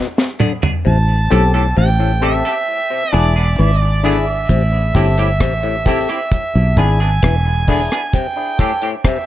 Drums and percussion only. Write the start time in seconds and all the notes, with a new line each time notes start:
0.18 snare
0.40 mid tom
0.63 floor tom
4.49 kick, closed hi-hat
4.95 kick, open hi-hat
5.18 closed hi-hat
5.40 kick, cross-stick, closed hi-hat
5.85 kick, open hi-hat
6.09 closed hi-hat
6.32 kick, closed hi-hat
6.77 kick, closed hi-hat
7.01 closed hi-hat
7.22 kick, cross-stick, closed hi-hat
7.68 kick, open hi-hat
7.91 cross-stick, closed hi-hat
8.13 kick, closed hi-hat
8.59 kick, closed hi-hat
8.82 closed hi-hat
9.05 kick, cross-stick, closed hi-hat